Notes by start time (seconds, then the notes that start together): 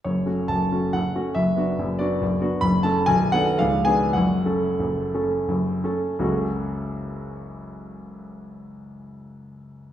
0.04 F#1 F#2 C#5
0.26 A3 C#4 F#4
0.48 F#1 F#2 A5
0.72 A3 C#4 F#4
0.93 F#1 F#2 F#5
1.15 A3 C#4 F#4
1.35 F#1 F#2 E5
1.56 B3 D4 F#4
1.79 F#1 F#2
1.99 B3 D4 F#4 D5
2.21 F#1 F#2
2.42 B3 D4 F#4
2.61 F#1 F#2 B5
2.83 A3 C#4 A4 A5
3.06 B0 B1 G#5
3.32 B3 D4 A4 F#5
3.59 C#1 C#2 F5
3.85 B3 D4 G#4 G#5
4.13 F#1 F#2 F#5
4.45 A3 C#4 A4
4.80 F#1 F#2
5.14 A3 C#4 A4
5.48 F#1 F#2
5.83 A3 C#4 A4
6.19 F#1 C#2 F#3 A3 C#4 F#4